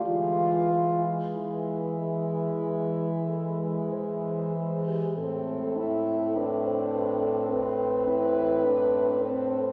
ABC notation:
X:1
M:4/4
L:1/16
Q:1/4=50
K:Am
V:1 name="French horn"
B2 B4 B4 A B c3 G | A4 B c B A B6 A2 |]
V:2 name="French horn"
F3 z E8- E2 z2 | C16 |]
V:3 name="French horn"
^G,2 G,4 G,4 G,4 G,2 | C2 E2 D4 C2 E2 D2 C2 |]
V:4 name="French horn" clef=bass
E,4 E,4 E,4 E,4 | A,,16 |]